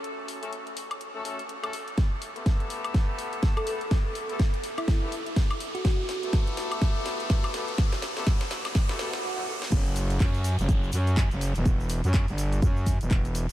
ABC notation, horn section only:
X:1
M:4/4
L:1/16
Q:"Swing 16ths" 1/4=124
K:Glyd
V:1 name="Horn section"
z3 [A,CFA] z4 z [A,CFA] [A,CFA] z2 [A,CFA] z2 | z3 [A,B,GA]8- [A,B,GA]3 [A,B,GA] z | z3 [A,B,GA] z4 z [A,B,GA] z6 | z3 [A,B,GA]8- [A,B,GA]3 [A,B,GA] z |
z3 [A,B,GA] z4 z [A,B,GA] [A,B,GA] z4 z | z16 | z16 |]